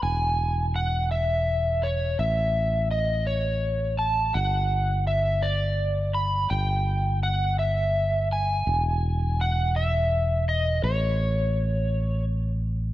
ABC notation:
X:1
M:6/8
L:1/8
Q:3/8=56
K:E
V:1 name="Electric slide guitar"
g2 f e2 c | e2 d c2 a | f2 e =d2 b | =g2 f e2 ^g- |
g2 f e2 d | c4 z2 |]
V:2 name="Fingered electric bass" clef=bass
E,,,6 | A,,,6 | =G,,,6 | =G,,,6 |
E,,,6 | A,,,6 |]